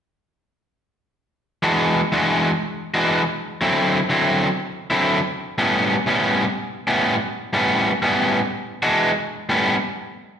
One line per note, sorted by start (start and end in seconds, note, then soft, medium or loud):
1.63 2.00 E3 medium
1.63 2.00 G#3 medium
1.63 2.00 D4 medium
1.63 2.01 F#4 medium
2.12 2.49 E3 medium
2.12 2.50 G#3 medium
2.12 2.50 D4 medium
2.12 2.50 F#4 medium
2.94 3.22 E3 medium
2.94 3.22 G#3 medium
2.94 3.22 D4 medium
2.94 3.21 F#4 medium
3.61 3.98 D3 medium
3.61 3.98 F#3 medium
3.61 3.98 C4 medium
3.61 3.98 E4 medium
4.09 4.47 D3 medium
4.09 4.47 F#3 medium
4.09 4.47 C4 medium
4.09 4.47 E4 medium
4.90 5.19 D3 medium
4.90 5.19 F#3 medium
4.90 5.18 C4 medium
4.90 5.18 E4 medium
5.58 5.94 A2 medium
5.58 5.95 G3 medium
5.58 5.95 B3 medium
5.58 5.95 C#4 medium
6.06 6.43 A2 medium
6.06 6.44 G3 medium
6.06 6.44 B3 medium
6.06 6.44 C#4 medium
6.87 7.15 A2 medium
6.87 7.15 G3 medium
6.87 7.15 B3 medium
6.87 7.14 C#4 medium
7.53 7.90 A2 medium
7.53 7.90 G3 medium
7.53 7.91 B3 medium
7.53 7.91 C#4 medium
8.02 8.39 A2 medium
8.02 8.39 G3 medium
8.02 8.39 B3 medium
8.02 8.39 C#4 medium
8.83 9.10 E3 medium
8.83 9.10 G#3 medium
8.83 9.10 D4 medium
8.83 9.10 F#4 medium
9.49 9.74 A2 medium
9.49 9.74 G3 loud
9.49 9.74 B3 medium
9.49 9.75 C#4 loud